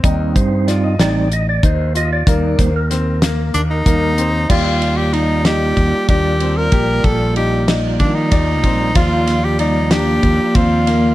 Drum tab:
CC |-------|-------|x------|-------|
RD |-------|-------|-xxxxxx|xxxxxxx|
HH |xxxxxxx|xxxxxxx|-------|-------|
SD |--oo---|-ooo---|---o---|---o-o-|
BD |oo---o-|oo---o-|o---oo-|oo--ooo|

CC |-------|
RD |xxxxxxx|
HH |-------|
SD |-o-o---|
BD |o---oo-|